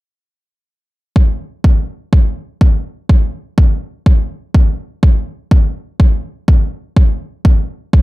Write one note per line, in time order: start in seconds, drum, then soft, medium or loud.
1.16 kick loud
1.64 kick loud
2.13 kick loud
2.61 kick loud
3.09 kick loud
3.58 kick loud
4.06 kick loud
4.55 kick loud
5.03 kick loud
5.51 kick loud
6.00 kick loud
6.48 kick loud
6.96 kick loud
7.45 kick loud
7.93 kick loud